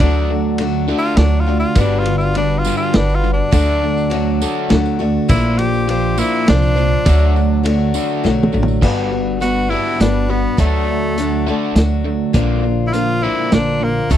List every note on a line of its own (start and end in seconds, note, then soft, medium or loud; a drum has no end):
0.00 0.91 D2 loud
0.00 0.28 D3 medium
0.00 0.60 D3 medium
0.00 0.59 F#3 medium
0.00 0.28 A3 medium
0.00 0.59 A3 medium
0.00 0.57 D4 medium
0.00 0.28 D4 medium
0.00 0.61 D4 medium
0.00 0.61 F#4 medium
0.00 kick loud
0.00 ride medium
0.30 0.56 D3 medium
0.30 0.57 A3 medium
0.58 0.86 D3 medium
0.58 0.89 F#3 medium
0.58 0.89 A3 medium
0.58 0.86 A3 medium
0.58 0.89 D4 medium
0.58 0.87 F#4 medium
0.58 ride medium
0.88 1.16 D3 medium
0.88 1.16 A3 medium
0.88 1.18 A3 soft
0.88 1.16 D4 loud
0.88 1.19 D4 soft
0.88 1.18 F#4 medium
0.98 1.19 F4 loud
1.17 1.63 D2 loud
1.17 1.45 D3 medium
1.17 1.47 F#3 medium
1.17 1.45 A3 medium
1.17 1.48 A3 medium
1.17 1.41 D4 medium
1.17 1.47 D4 medium
1.17 1.45 F#4 medium
1.17 snare medium
1.17 ride medium
1.40 1.58 F4 medium
1.46 1.74 D3 medium
1.46 1.74 A3 medium
1.46 1.76 A3 soft
1.46 1.75 D4 soft
1.46 1.76 F#4 medium
1.59 1.77 F4 medium
1.75 2.67 G1 loud
1.75 2.05 G2 medium
1.75 2.05 D3 medium
1.75 2.33 G3 medium
1.75 2.06 G3 medium
1.75 2.35 B3 medium
1.75 2.36 D4 medium
1.75 2.36 F#4 medium
1.75 kick loud
1.75 ride medium
1.75 tambourine medium
1.80 2.00 D4 medium
1.99 2.17 F4 loud
2.05 2.33 G2 medium
2.05 2.33 D3 medium
2.05 ride medium
2.18 2.36 F4 medium
2.18 tambourine soft
2.34 2.63 G2 medium
2.34 2.63 D3 medium
2.34 2.92 G3 medium
2.34 2.93 B3 medium
2.34 2.94 D4 medium
2.34 2.60 D4 medium
2.34 2.94 F#4 medium
2.34 ride medium
2.58 2.76 F4 medium
2.65 2.93 G2 medium
2.65 2.94 D3 loud
2.65 2.94 G3 loud
2.65 tambourine medium
2.77 2.97 F4 medium
2.93 3.40 G1 loud
2.93 3.21 G2 medium
2.93 3.21 D3 medium
2.93 3.52 G3 medium
2.93 3.52 B3 medium
2.93 3.52 D4 medium
2.93 3.16 D4 medium
2.93 3.52 F#4 medium
2.93 snare medium
2.93 ride medium
3.10 tambourine soft
3.15 3.32 F4 medium
3.24 3.50 G2 medium
3.24 3.51 D3 medium
3.24 tambourine soft
3.33 4.47 D4 medium
3.51 4.43 D2 loud
3.51 4.11 D3 medium
3.51 3.81 D3 medium
3.51 4.09 F#3 medium
3.51 4.09 A3 medium
3.51 3.81 A3 medium
3.51 4.11 D4 medium
3.51 3.81 D4 medium
3.51 4.11 F#4 medium
3.51 kick loud
3.51 ride medium
3.51 tambourine medium
3.84 4.09 D3 medium
3.84 4.10 A3 medium
3.98 tambourine soft
4.10 4.39 D3 medium
4.10 4.68 F#3 medium
4.10 4.69 A3 medium
4.10 4.39 A3 medium
4.10 4.71 D4 medium
4.10 4.70 F#4 medium
4.10 ride medium
4.42 4.69 D3 loud
4.42 4.69 A3 loud
4.42 4.70 D4 loud
4.42 tambourine loud
4.69 5.16 D2 loud
4.69 4.98 D3 medium
4.69 4.99 F#3 medium
4.69 5.00 A3 medium
4.69 4.98 A3 medium
4.69 4.99 D4 medium
4.69 4.98 F#4 medium
4.69 snare medium
4.69 ride medium
4.85 tambourine soft
4.99 5.27 D3 medium
4.99 5.27 A3 medium
4.99 5.30 A3 soft
4.99 5.29 D4 medium
4.99 5.29 F#4 medium
4.99 tambourine soft
5.28 6.20 A#1 loud
5.28 5.57 A#2 medium
5.28 5.57 F3 medium
5.28 5.87 A#3 medium
5.28 5.58 A#3 loud
5.28 5.88 D4 medium
5.28 5.60 E4 medium
5.28 5.88 F4 medium
5.28 5.89 C5 medium
5.28 kick loud
5.28 ride medium
5.28 tambourine medium
5.58 5.86 A#2 medium
5.58 5.86 F3 medium
5.58 5.87 G4 medium
5.58 ride medium
5.74 tambourine soft
5.88 6.15 A#2 medium
5.88 6.15 F3 medium
5.88 6.45 A#3 medium
5.88 6.47 D4 medium
5.88 6.47 F4 medium
5.88 6.20 G4 medium
5.88 6.48 C5 medium
5.88 ride medium
6.18 6.45 A#2 medium
6.18 6.46 F3 loud
6.18 6.46 A#3 loud
6.18 6.47 E4 medium
6.18 tambourine medium
6.47 6.93 C2 loud
6.47 6.73 A#2 medium
6.47 6.74 F3 medium
6.47 6.76 A#3 medium
6.47 6.77 D4 medium
6.47 7.62 D4 loud
6.47 6.76 F4 medium
6.47 6.74 C5 medium
6.47 snare medium
6.47 ride medium
6.62 tambourine soft
6.75 7.03 A#2 medium
6.75 7.04 F3 medium
6.75 7.05 D4 soft
6.75 7.06 F4 medium
6.75 7.05 C5 medium
6.75 tambourine soft
7.05 7.97 D2 loud
7.05 7.33 D3 medium
7.05 7.64 D3 medium
7.05 7.62 F#3 medium
7.05 7.33 A3 medium
7.05 7.63 A3 medium
7.05 7.65 D4 medium
7.05 7.34 D4 medium
7.05 7.65 F#4 medium
7.05 kick loud
7.05 ride medium
7.05 tambourine medium
7.36 7.62 D3 medium
7.36 7.62 A3 medium
7.36 tambourine soft
7.63 7.91 D3 medium
7.63 8.23 F#3 medium
7.63 8.23 A3 medium
7.63 7.91 A3 medium
7.63 8.24 D4 medium
7.63 8.24 F#4 medium
7.63 ride medium
7.94 8.22 D3 loud
7.94 8.22 A3 loud
7.94 8.22 D4 loud
7.94 tambourine loud
8.09 tambourine soft
8.24 8.50 B1 medium
8.24 8.50 D3 medium
8.24 8.82 F#3 medium
8.24 8.50 A3 medium
8.24 8.82 A3 medium
8.24 8.83 D4 medium
8.24 8.82 F#4 medium
8.24 snare medium
8.24 tambourine soft
8.43 mid tom medium
8.52 8.80 A1 loud
8.52 8.79 D3 medium
8.52 8.80 A3 medium
8.52 tambourine soft
8.63 floor tom medium
8.68 tambourine soft
8.82 9.73 G1 loud
8.82 9.39 G3 medium
8.82 9.10 G3 medium
8.82 9.40 B3 medium
8.82 9.10 B3 medium
8.82 9.10 D4 medium
8.82 9.42 D4 medium
8.82 9.42 F#4 medium
8.82 kick loud
8.82 crash loud
9.12 9.38 G3 medium
9.12 9.38 B3 medium
9.40 9.70 G3 medium
9.40 9.67 G3 medium
9.40 9.67 B3 medium
9.40 9.70 B3 medium
9.40 9.71 D4 medium
9.40 9.71 F#4 loud
9.40 9.69 F#4 medium
9.40 closed hi-hat medium
9.70 9.98 G3 medium
9.70 9.98 B3 loud
9.70 10.00 B3 soft
9.70 9.98 D4 loud
9.70 10.00 D4 soft
9.70 10.02 E4 loud
9.70 9.99 F#4 soft
10.00 10.45 G1 medium
10.00 10.26 G3 medium
10.00 10.29 G3 medium
10.00 10.26 B3 medium
10.00 10.29 B3 medium
10.00 10.32 D4 medium
10.00 10.28 D4 medium
10.00 10.27 F#4 medium
10.00 snare medium
10.00 closed hi-hat medium
10.28 10.56 G3 medium
10.28 10.56 B3 medium
10.28 10.59 B3 medium
10.28 10.58 B3 soft
10.28 10.58 D4 soft
10.28 10.58 F#4 soft
10.57 11.49 D2 medium
10.57 11.16 D3 medium
10.57 10.86 D3 medium
10.57 11.17 F#3 medium
10.57 11.17 A3 medium
10.57 10.86 A3 medium
10.57 11.72 A3 medium
10.57 11.19 D4 medium
10.57 10.86 D4 medium
10.57 11.17 F#4 medium
10.57 kick loud
10.57 closed hi-hat medium
10.88 11.14 D3 medium
10.88 11.14 A3 medium
11.17 11.44 D3 medium
11.17 11.47 F#3 medium
11.17 11.44 A3 medium
11.17 11.47 A3 medium
11.17 11.47 D4 medium
11.17 11.46 F#4 medium
11.17 closed hi-hat medium
11.46 11.74 D3 medium
11.46 11.74 A3 medium
11.46 11.75 A3 soft
11.46 11.74 D4 loud
11.46 11.76 D4 medium
11.46 11.76 F#4 medium
11.75 12.21 D2 medium
11.75 12.02 D3 medium
11.75 12.33 F#3 medium
11.75 12.02 A3 medium
11.75 12.34 A3 medium
11.75 12.34 D4 medium
11.75 12.35 F#4 medium
11.75 snare medium
11.75 closed hi-hat medium
12.05 12.31 D3 medium
12.05 12.32 A3 medium
12.33 13.25 A#1 loud
12.33 12.62 A#2 medium
12.33 12.62 D3 medium
12.33 12.92 A#3 medium
12.33 12.62 A#3 medium
12.33 12.93 D4 medium
12.33 12.93 F4 medium
12.33 12.94 C5 medium
12.33 kick loud
12.33 closed hi-hat medium
12.64 12.90 A#2 medium
12.64 12.90 D3 medium
12.87 12.94 E4 medium
12.93 13.20 A#2 medium
12.93 13.20 D3 medium
12.93 13.23 A#3 medium
12.93 13.23 D4 medium
12.93 13.24 F4 loud
12.93 13.22 F4 medium
12.93 13.21 C5 medium
12.93 closed hi-hat medium
13.22 13.51 A#2 medium
13.22 13.51 D3 medium
13.22 13.51 A#3 loud
13.22 13.51 D4 soft
13.22 13.54 E4 loud
13.22 13.52 F4 soft
13.22 13.52 C5 soft
13.51 13.98 A#1 medium
13.51 13.79 A#2 medium
13.51 13.79 D3 medium
13.51 14.10 A#3 medium
13.51 14.10 D4 medium
13.51 13.85 D4 loud
13.51 14.11 F4 medium
13.51 14.11 C5 medium
13.51 snare medium
13.51 closed hi-hat medium
13.81 14.08 A#2 medium
13.81 14.08 D3 medium
13.81 14.13 A#3 medium
14.10 14.17 D2 medium
14.10 14.17 D3 medium
14.10 14.17 F#3 medium
14.10 14.17 A3 medium
14.10 14.17 D4 medium
14.10 14.17 F#4 medium
14.10 kick loud
14.10 closed hi-hat medium